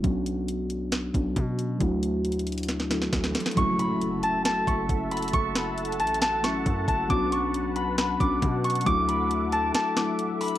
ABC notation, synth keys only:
X:1
M:4/4
L:1/8
Q:1/4=136
K:F#m
V:1 name="Synth keys"
[F,B,CDF]4- [F,B,CDF] [F,B,CDF]3 | [F,A,DEF]4- [F,A,DEF] [F,A,DEA]3 | [F,A,CEF]8- | [F,A,CEF]4- [F,A,CEF] [F,A,CEF]3 |
[F,B,CDF]4- [F,B,CDF] [F,B,CDF]3 | [F,A,DEF]4- [F,A,DEF] [F,A,DEA]3 |]